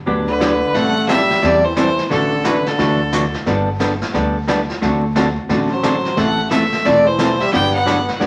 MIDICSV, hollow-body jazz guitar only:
0, 0, Header, 1, 2, 480
1, 0, Start_track
1, 0, Key_signature, 1, "major"
1, 0, Tempo, 339175
1, 1056, Time_signature, 4, 2, 24, 8
1, 11698, End_track
2, 0, Start_track
2, 0, Title_t, "Hollow-body jazz guitar"
2, 0, Program_c, 0, 26
2, 87, Note_on_c, 0, 50, 51
2, 92, Note_on_c, 0, 54, 58
2, 98, Note_on_c, 0, 59, 63
2, 99, Note_on_c, 0, 62, 59
2, 101, Note_on_c, 0, 67, 61
2, 397, Note_off_c, 0, 50, 0
2, 400, Note_off_c, 0, 54, 0
2, 402, Note_off_c, 0, 59, 0
2, 403, Note_off_c, 0, 62, 0
2, 404, Note_off_c, 0, 67, 0
2, 566, Note_on_c, 0, 50, 64
2, 574, Note_on_c, 0, 54, 72
2, 580, Note_on_c, 0, 59, 80
2, 580, Note_on_c, 0, 62, 66
2, 583, Note_on_c, 0, 67, 75
2, 733, Note_off_c, 0, 50, 0
2, 737, Note_off_c, 0, 54, 0
2, 740, Note_off_c, 0, 59, 0
2, 740, Note_off_c, 0, 62, 0
2, 741, Note_off_c, 0, 67, 0
2, 1049, Note_on_c, 0, 52, 55
2, 1055, Note_on_c, 0, 55, 53
2, 1059, Note_on_c, 0, 60, 55
2, 1063, Note_on_c, 0, 64, 61
2, 1068, Note_on_c, 0, 69, 58
2, 1359, Note_off_c, 0, 52, 0
2, 1362, Note_off_c, 0, 55, 0
2, 1363, Note_off_c, 0, 60, 0
2, 1366, Note_off_c, 0, 64, 0
2, 1368, Note_off_c, 0, 69, 0
2, 1520, Note_on_c, 0, 52, 68
2, 1527, Note_on_c, 0, 55, 70
2, 1535, Note_on_c, 0, 60, 74
2, 1540, Note_on_c, 0, 64, 77
2, 1541, Note_on_c, 0, 69, 75
2, 1690, Note_off_c, 0, 52, 0
2, 1694, Note_off_c, 0, 55, 0
2, 1698, Note_off_c, 0, 60, 0
2, 1700, Note_off_c, 0, 64, 0
2, 1701, Note_off_c, 0, 69, 0
2, 2008, Note_on_c, 0, 52, 60
2, 2018, Note_on_c, 0, 55, 59
2, 2024, Note_on_c, 0, 60, 62
2, 2024, Note_on_c, 0, 64, 62
2, 2030, Note_on_c, 0, 69, 63
2, 2319, Note_off_c, 0, 52, 0
2, 2324, Note_off_c, 0, 55, 0
2, 2326, Note_off_c, 0, 60, 0
2, 2326, Note_off_c, 0, 64, 0
2, 2329, Note_off_c, 0, 69, 0
2, 2492, Note_on_c, 0, 52, 66
2, 2498, Note_on_c, 0, 60, 83
2, 2499, Note_on_c, 0, 55, 68
2, 2505, Note_on_c, 0, 64, 82
2, 2511, Note_on_c, 0, 69, 77
2, 2657, Note_off_c, 0, 52, 0
2, 2660, Note_off_c, 0, 55, 0
2, 2660, Note_off_c, 0, 60, 0
2, 2663, Note_off_c, 0, 64, 0
2, 2666, Note_off_c, 0, 69, 0
2, 2971, Note_on_c, 0, 50, 55
2, 2972, Note_on_c, 0, 52, 60
2, 2980, Note_on_c, 0, 57, 54
2, 2981, Note_on_c, 0, 62, 59
2, 2988, Note_on_c, 0, 66, 58
2, 3281, Note_off_c, 0, 50, 0
2, 3281, Note_off_c, 0, 52, 0
2, 3285, Note_off_c, 0, 57, 0
2, 3285, Note_off_c, 0, 62, 0
2, 3289, Note_off_c, 0, 66, 0
2, 3454, Note_on_c, 0, 50, 64
2, 3460, Note_on_c, 0, 52, 80
2, 3465, Note_on_c, 0, 57, 72
2, 3467, Note_on_c, 0, 62, 74
2, 3475, Note_on_c, 0, 66, 72
2, 3618, Note_off_c, 0, 50, 0
2, 3621, Note_off_c, 0, 52, 0
2, 3623, Note_off_c, 0, 57, 0
2, 3624, Note_off_c, 0, 62, 0
2, 3628, Note_off_c, 0, 66, 0
2, 3933, Note_on_c, 0, 50, 60
2, 3943, Note_on_c, 0, 52, 59
2, 3946, Note_on_c, 0, 57, 61
2, 3947, Note_on_c, 0, 62, 67
2, 3953, Note_on_c, 0, 66, 72
2, 4241, Note_off_c, 0, 50, 0
2, 4247, Note_off_c, 0, 52, 0
2, 4248, Note_off_c, 0, 57, 0
2, 4249, Note_off_c, 0, 62, 0
2, 4251, Note_off_c, 0, 66, 0
2, 4425, Note_on_c, 0, 50, 66
2, 4426, Note_on_c, 0, 52, 68
2, 4430, Note_on_c, 0, 57, 70
2, 4438, Note_on_c, 0, 62, 77
2, 4438, Note_on_c, 0, 66, 80
2, 4584, Note_off_c, 0, 50, 0
2, 4584, Note_off_c, 0, 52, 0
2, 4586, Note_off_c, 0, 57, 0
2, 4590, Note_off_c, 0, 62, 0
2, 4590, Note_off_c, 0, 66, 0
2, 4902, Note_on_c, 0, 55, 54
2, 4909, Note_on_c, 0, 59, 62
2, 4919, Note_on_c, 0, 62, 59
2, 4923, Note_on_c, 0, 69, 60
2, 5206, Note_off_c, 0, 55, 0
2, 5210, Note_off_c, 0, 59, 0
2, 5214, Note_off_c, 0, 62, 0
2, 5217, Note_off_c, 0, 69, 0
2, 5375, Note_on_c, 0, 55, 69
2, 5375, Note_on_c, 0, 59, 76
2, 5383, Note_on_c, 0, 62, 75
2, 5388, Note_on_c, 0, 69, 74
2, 5538, Note_off_c, 0, 55, 0
2, 5539, Note_off_c, 0, 59, 0
2, 5542, Note_off_c, 0, 62, 0
2, 5545, Note_off_c, 0, 69, 0
2, 5851, Note_on_c, 0, 55, 55
2, 5859, Note_on_c, 0, 59, 60
2, 5865, Note_on_c, 0, 62, 61
2, 5870, Note_on_c, 0, 69, 62
2, 6160, Note_off_c, 0, 55, 0
2, 6164, Note_off_c, 0, 59, 0
2, 6167, Note_off_c, 0, 62, 0
2, 6170, Note_off_c, 0, 69, 0
2, 6334, Note_on_c, 0, 55, 71
2, 6342, Note_on_c, 0, 59, 74
2, 6344, Note_on_c, 0, 62, 77
2, 6353, Note_on_c, 0, 69, 73
2, 6498, Note_off_c, 0, 55, 0
2, 6502, Note_off_c, 0, 59, 0
2, 6503, Note_off_c, 0, 62, 0
2, 6507, Note_off_c, 0, 69, 0
2, 6812, Note_on_c, 0, 50, 55
2, 6818, Note_on_c, 0, 57, 62
2, 6823, Note_on_c, 0, 60, 53
2, 6825, Note_on_c, 0, 66, 57
2, 6832, Note_on_c, 0, 69, 63
2, 7121, Note_off_c, 0, 50, 0
2, 7124, Note_off_c, 0, 57, 0
2, 7126, Note_off_c, 0, 60, 0
2, 7127, Note_off_c, 0, 66, 0
2, 7131, Note_off_c, 0, 69, 0
2, 7292, Note_on_c, 0, 50, 69
2, 7296, Note_on_c, 0, 57, 71
2, 7299, Note_on_c, 0, 60, 78
2, 7308, Note_on_c, 0, 66, 85
2, 7312, Note_on_c, 0, 69, 75
2, 7457, Note_off_c, 0, 50, 0
2, 7459, Note_off_c, 0, 57, 0
2, 7460, Note_off_c, 0, 60, 0
2, 7465, Note_off_c, 0, 66, 0
2, 7467, Note_off_c, 0, 69, 0
2, 7771, Note_on_c, 0, 50, 58
2, 7775, Note_on_c, 0, 57, 61
2, 7780, Note_on_c, 0, 60, 61
2, 7784, Note_on_c, 0, 69, 62
2, 7785, Note_on_c, 0, 66, 62
2, 8080, Note_off_c, 0, 50, 0
2, 8082, Note_off_c, 0, 57, 0
2, 8084, Note_off_c, 0, 60, 0
2, 8087, Note_off_c, 0, 66, 0
2, 8087, Note_off_c, 0, 69, 0
2, 8252, Note_on_c, 0, 50, 66
2, 8256, Note_on_c, 0, 57, 68
2, 8260, Note_on_c, 0, 60, 71
2, 8263, Note_on_c, 0, 66, 74
2, 8268, Note_on_c, 0, 69, 74
2, 8416, Note_off_c, 0, 50, 0
2, 8418, Note_off_c, 0, 57, 0
2, 8420, Note_off_c, 0, 60, 0
2, 8422, Note_off_c, 0, 66, 0
2, 8425, Note_off_c, 0, 69, 0
2, 8729, Note_on_c, 0, 52, 49
2, 8736, Note_on_c, 0, 57, 52
2, 8738, Note_on_c, 0, 60, 54
2, 8741, Note_on_c, 0, 64, 60
2, 8747, Note_on_c, 0, 69, 61
2, 9039, Note_off_c, 0, 52, 0
2, 9042, Note_off_c, 0, 57, 0
2, 9043, Note_off_c, 0, 60, 0
2, 9045, Note_off_c, 0, 64, 0
2, 9048, Note_off_c, 0, 69, 0
2, 9202, Note_on_c, 0, 52, 66
2, 9211, Note_on_c, 0, 57, 73
2, 9212, Note_on_c, 0, 60, 79
2, 9214, Note_on_c, 0, 64, 80
2, 9220, Note_on_c, 0, 69, 74
2, 9371, Note_off_c, 0, 52, 0
2, 9376, Note_off_c, 0, 57, 0
2, 9376, Note_off_c, 0, 60, 0
2, 9377, Note_off_c, 0, 64, 0
2, 9380, Note_off_c, 0, 69, 0
2, 9694, Note_on_c, 0, 52, 54
2, 9694, Note_on_c, 0, 57, 55
2, 9700, Note_on_c, 0, 60, 61
2, 9706, Note_on_c, 0, 64, 58
2, 9707, Note_on_c, 0, 69, 63
2, 10001, Note_off_c, 0, 52, 0
2, 10001, Note_off_c, 0, 57, 0
2, 10003, Note_off_c, 0, 60, 0
2, 10007, Note_off_c, 0, 64, 0
2, 10007, Note_off_c, 0, 69, 0
2, 10168, Note_on_c, 0, 52, 73
2, 10176, Note_on_c, 0, 57, 74
2, 10179, Note_on_c, 0, 60, 68
2, 10184, Note_on_c, 0, 69, 87
2, 10187, Note_on_c, 0, 64, 72
2, 10334, Note_off_c, 0, 52, 0
2, 10338, Note_off_c, 0, 57, 0
2, 10339, Note_off_c, 0, 60, 0
2, 10342, Note_off_c, 0, 69, 0
2, 10343, Note_off_c, 0, 64, 0
2, 10645, Note_on_c, 0, 50, 56
2, 10645, Note_on_c, 0, 54, 50
2, 10651, Note_on_c, 0, 59, 62
2, 10654, Note_on_c, 0, 62, 61
2, 10658, Note_on_c, 0, 67, 62
2, 10956, Note_off_c, 0, 50, 0
2, 10956, Note_off_c, 0, 54, 0
2, 10958, Note_off_c, 0, 59, 0
2, 10960, Note_off_c, 0, 62, 0
2, 10962, Note_off_c, 0, 67, 0
2, 11118, Note_on_c, 0, 50, 79
2, 11120, Note_on_c, 0, 54, 77
2, 11128, Note_on_c, 0, 59, 70
2, 11131, Note_on_c, 0, 67, 78
2, 11133, Note_on_c, 0, 62, 74
2, 11288, Note_off_c, 0, 50, 0
2, 11289, Note_off_c, 0, 54, 0
2, 11293, Note_off_c, 0, 59, 0
2, 11295, Note_off_c, 0, 67, 0
2, 11296, Note_off_c, 0, 62, 0
2, 11597, Note_on_c, 0, 50, 60
2, 11603, Note_on_c, 0, 54, 68
2, 11607, Note_on_c, 0, 59, 60
2, 11611, Note_on_c, 0, 62, 69
2, 11613, Note_on_c, 0, 67, 66
2, 11698, Note_off_c, 0, 50, 0
2, 11698, Note_off_c, 0, 54, 0
2, 11698, Note_off_c, 0, 59, 0
2, 11698, Note_off_c, 0, 62, 0
2, 11698, Note_off_c, 0, 67, 0
2, 11698, End_track
0, 0, End_of_file